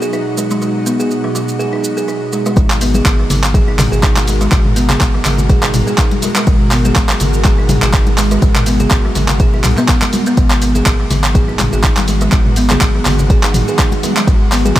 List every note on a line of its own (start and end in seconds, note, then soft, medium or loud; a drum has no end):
0.00 2.53 B2 medium
0.00 2.53 F#3 medium
0.00 2.53 D#4 medium
0.00 2.53 F#4 medium
0.00 0.13 G#4 medium
0.00 shaker soft
0.13 0.25 D#4 medium
0.13 shaker soft
0.38 0.50 G#3 medium
0.38 shaker medium
0.51 0.61 G#3 loud
0.51 shaker soft
0.62 0.74 G#3 medium
0.62 shaker soft
0.86 0.93 B3 medium
0.86 shaker medium
1.00 1.10 G#4 medium
1.00 shaker soft
1.11 shaker soft
1.24 1.34 F#3 medium
1.35 1.47 F#3 medium
1.35 shaker medium
1.48 shaker soft
1.59 1.71 G#4 medium
1.59 shaker soft
1.73 1.83 D#4 medium
1.84 shaker medium
1.97 2.08 G#4 medium
1.97 shaker soft
2.08 2.20 D#4 medium
2.08 shaker soft
2.33 2.45 G#3 medium
2.33 shaker medium
2.46 2.56 G#3 loud
2.46 shaker soft
2.56 3.01 G#1 loud
2.56 10.34 B2 medium
2.56 10.34 G#3 medium
2.56 2.69 G#3 medium
2.56 10.34 F#4 loud
2.56 10.34 A#4 medium
2.56 kick loud
2.56 closed hi-hat medium
2.56 muted conga medium
2.56 shaker soft
2.70 clap medium
2.81 2.89 B3 medium
2.81 open hi-hat loud
2.81 shaker loud
2.94 3.05 G#4 medium
2.94 closed hi-hat soft
2.94 muted conga soft
2.94 high conga medium
2.94 shaker medium
3.05 3.25 G#1 loud
3.05 kick loud
3.05 clap loud
3.05 closed hi-hat medium
3.05 shaker soft
3.19 3.29 F#3 medium
3.30 3.87 G#1 loud
3.30 3.42 F#3 medium
3.30 open hi-hat loud
3.30 muted conga soft
3.30 low conga loud
3.30 shaker medium
3.44 clap loud
3.44 shaker medium
3.54 3.67 G#4 medium
3.54 kick loud
3.54 closed hi-hat medium
3.54 high conga medium
3.54 shaker soft
3.68 3.78 D#4 medium
3.68 muted conga soft
3.79 clap medium
3.79 mid tom medium
3.79 open hi-hat medium
3.79 high conga loud
3.79 low conga loud
3.79 shaker medium
3.92 4.48 G#1 loud
3.92 4.03 G#4 medium
3.92 shaker medium
4.03 4.15 D#4 medium
4.03 kick loud
4.03 clap medium
4.03 closed hi-hat medium
4.03 shaker soft
4.17 clap loud
4.17 closed hi-hat soft
4.17 muted conga medium
4.17 high conga loud
4.28 4.40 G#3 medium
4.28 open hi-hat medium
4.28 shaker loud
4.41 4.51 G#3 loud
4.41 closed hi-hat soft
4.41 shaker medium
4.52 4.97 G#1 loud
4.52 4.64 G#3 medium
4.52 kick loud
4.52 clap medium
4.52 closed hi-hat medium
4.52 muted conga medium
4.52 shaker soft
4.65 mid tom medium
4.76 4.83 B3 medium
4.76 open hi-hat loud
4.76 shaker loud
4.89 5.00 G#4 medium
4.89 clap loud
4.89 closed hi-hat soft
4.89 muted conga soft
4.89 high conga loud
4.89 low conga medium
4.89 shaker medium
5.01 5.20 G#1 loud
5.01 kick loud
5.01 clap loud
5.01 closed hi-hat medium
5.01 shaker soft
5.14 5.24 F#3 medium
5.25 5.83 G#1 loud
5.25 5.37 F#3 medium
5.25 clap medium
5.25 open hi-hat medium
5.25 muted conga medium
5.25 low conga loud
5.25 shaker loud
5.38 low conga medium
5.38 shaker medium
5.49 5.62 G#4 medium
5.49 kick loud
5.49 closed hi-hat medium
5.49 shaker soft
5.63 5.73 D#4 medium
5.63 clap loud
5.63 muted conga soft
5.74 mid tom medium
5.74 open hi-hat medium
5.74 high conga loud
5.74 shaker medium
5.87 5.98 G#4 medium
5.87 shaker medium
5.98 6.10 D#4 medium
5.98 kick loud
5.98 clap loud
5.98 closed hi-hat medium
5.98 shaker soft
6.11 closed hi-hat soft
6.11 muted conga medium
6.11 high conga loud
6.22 6.35 G#3 medium
6.22 open hi-hat medium
6.22 high conga loud
6.22 shaker loud
6.36 6.46 G#3 loud
6.36 clap loud
6.36 closed hi-hat soft
6.36 shaker medium
6.47 6.92 G#1 loud
6.47 6.59 G#3 medium
6.47 kick loud
6.47 closed hi-hat medium
6.47 muted conga soft
6.47 shaker soft
6.71 6.79 B3 medium
6.71 clap medium
6.71 open hi-hat medium
6.71 shaker loud
6.85 6.96 G#4 medium
6.85 closed hi-hat soft
6.85 muted conga soft
6.85 high conga loud
6.85 shaker medium
6.96 7.15 G#1 loud
6.96 kick loud
6.96 clap loud
6.96 closed hi-hat medium
6.96 shaker soft
7.09 7.19 F#3 medium
7.09 clap loud
7.20 7.78 G#1 loud
7.20 7.32 F#3 medium
7.20 open hi-hat medium
7.20 muted conga soft
7.20 low conga medium
7.20 shaker loud
7.34 shaker medium
7.45 7.57 G#4 medium
7.45 kick loud
7.45 clap medium
7.45 closed hi-hat medium
7.45 high conga medium
7.45 shaker soft
7.58 7.68 D#4 medium
7.58 muted conga soft
7.69 mid tom medium
7.69 open hi-hat medium
7.69 high conga loud
7.69 low conga loud
7.69 shaker loud
7.82 8.38 G#1 loud
7.82 7.93 G#4 medium
7.82 clap medium
7.82 shaker medium
7.94 8.06 D#4 medium
7.94 kick loud
7.94 clap loud
7.94 closed hi-hat medium
7.94 shaker soft
8.07 closed hi-hat soft
8.07 muted conga soft
8.07 high conga loud
8.18 8.30 G#3 medium
8.18 clap medium
8.18 open hi-hat medium
8.18 shaker loud
8.31 8.41 G#3 loud
8.31 closed hi-hat soft
8.31 shaker medium
8.42 8.87 G#1 loud
8.42 8.55 G#3 medium
8.42 kick loud
8.42 closed hi-hat medium
8.42 muted conga medium
8.42 shaker soft
8.56 clap medium
8.56 closed hi-hat soft
8.56 mid tom medium
8.66 8.74 B3 medium
8.66 open hi-hat medium
8.66 shaker loud
8.80 8.91 G#4 medium
8.80 closed hi-hat soft
8.80 muted conga soft
8.80 high conga loud
8.80 low conga medium
8.80 shaker medium
8.91 9.10 G#1 loud
8.91 kick loud
8.91 clap loud
8.91 closed hi-hat medium
8.91 shaker soft
9.05 9.15 F#3 medium
9.15 9.64 G#1 loud
9.15 9.28 F#3 medium
9.15 open hi-hat medium
9.15 muted conga soft
9.15 low conga medium
9.15 shaker medium
9.28 clap loud
9.28 closed hi-hat soft
9.28 low conga medium
9.28 shaker medium
9.40 9.52 G#4 medium
9.40 kick loud
9.40 closed hi-hat medium
9.40 shaker soft
9.54 9.63 D#4 medium
9.54 muted conga soft
9.64 9.75 B1 loud
9.64 clap medium
9.64 mid tom medium
9.64 open hi-hat medium
9.64 high conga loud
9.64 shaker medium
9.77 9.88 B3 loud
9.77 clap soft
9.77 shaker medium
9.88 9.96 G#3 medium
9.88 kick loud
9.88 clap loud
9.88 closed hi-hat medium
9.88 shaker soft
10.02 clap medium
10.02 closed hi-hat soft
10.02 muted conga medium
10.02 high conga loud
10.13 10.25 G#3 medium
10.13 open hi-hat medium
10.13 high conga loud
10.13 shaker loud
10.26 10.37 B3 loud
10.26 closed hi-hat soft
10.26 shaker medium
10.37 10.82 G#1 loud
10.37 14.80 D#3 medium
10.37 14.80 F#3 medium
10.37 10.50 G#3 medium
10.37 14.24 B3 medium
10.37 14.80 F#4 loud
10.37 kick loud
10.37 closed hi-hat medium
10.37 muted conga medium
10.37 shaker soft
10.50 clap medium
10.62 10.69 B3 medium
10.62 open hi-hat medium
10.62 shaker loud
10.75 10.86 G#4 medium
10.75 closed hi-hat soft
10.75 muted conga soft
10.75 high conga medium
10.75 shaker medium
10.86 11.05 G#1 loud
10.86 kick loud
10.86 clap loud
10.86 closed hi-hat medium
10.86 shaker soft
11.00 11.10 F#3 medium
11.10 11.68 G#1 loud
11.10 11.23 F#3 medium
11.10 open hi-hat medium
11.10 muted conga soft
11.10 low conga medium
11.10 shaker medium
11.24 clap medium
11.24 shaker medium
11.35 11.47 G#4 medium
11.35 kick loud
11.35 closed hi-hat medium
11.35 high conga medium
11.35 shaker soft
11.48 11.58 D#4 medium
11.48 muted conga soft
11.59 clap medium
11.59 mid tom medium
11.59 open hi-hat medium
11.59 high conga loud
11.59 low conga medium
11.59 shaker medium
11.73 12.29 G#1 loud
11.73 11.83 G#4 medium
11.73 shaker medium
11.84 11.96 D#4 medium
11.84 kick loud
11.84 clap loud
11.84 closed hi-hat medium
11.84 shaker soft
11.97 clap medium
11.97 closed hi-hat soft
11.97 muted conga medium
11.97 high conga loud
12.08 12.20 G#3 medium
12.08 open hi-hat medium
12.08 shaker loud
12.21 12.31 G#3 loud
12.21 closed hi-hat soft
12.21 shaker medium
12.32 12.77 G#1 loud
12.32 12.45 G#3 medium
12.32 kick loud
12.32 clap medium
12.32 closed hi-hat medium
12.32 muted conga soft
12.32 shaker soft
12.45 mid tom medium
12.56 12.64 B3 medium
12.56 open hi-hat medium
12.56 shaker medium
12.70 12.81 G#4 medium
12.70 clap medium
12.70 closed hi-hat soft
12.70 muted conga soft
12.70 high conga medium
12.70 low conga medium
12.70 shaker medium
12.81 13.01 G#1 loud
12.81 kick loud
12.81 clap loud
12.81 closed hi-hat medium
12.81 shaker soft
12.95 13.05 F#3 medium
13.05 13.63 G#1 loud
13.05 13.18 F#3 medium
13.05 clap medium
13.05 open hi-hat medium
13.05 muted conga medium
13.05 low conga medium
13.05 shaker medium
13.19 low conga medium
13.19 shaker medium
13.30 13.42 G#4 medium
13.30 kick loud
13.30 closed hi-hat medium
13.30 shaker soft
13.43 13.53 D#4 medium
13.43 clap medium
13.43 muted conga soft
13.54 mid tom medium
13.54 open hi-hat medium
13.54 high conga medium
13.54 shaker medium
13.68 13.78 G#4 medium
13.68 shaker medium
13.79 13.91 D#4 medium
13.79 kick loud
13.79 clap loud
13.79 closed hi-hat medium
13.79 shaker soft
13.92 closed hi-hat soft
13.92 muted conga medium
13.92 high conga loud
14.03 14.15 G#3 medium
14.03 open hi-hat medium
14.03 high conga medium
14.03 shaker medium
14.17 14.27 G#3 loud
14.17 clap medium
14.17 closed hi-hat soft
14.17 shaker soft
14.27 14.72 G#1 loud
14.27 14.40 G#3 medium
14.27 14.80 C#4 medium
14.27 kick loud
14.27 closed hi-hat medium
14.27 muted conga medium
14.27 shaker soft
14.52 14.59 B3 medium
14.52 clap medium
14.52 open hi-hat medium
14.52 shaker loud
14.65 14.76 G#4 medium
14.65 closed hi-hat soft
14.65 muted conga soft
14.65 high conga medium
14.65 shaker medium
14.76 14.80 G#1 loud
14.76 kick loud
14.76 clap loud
14.76 closed hi-hat medium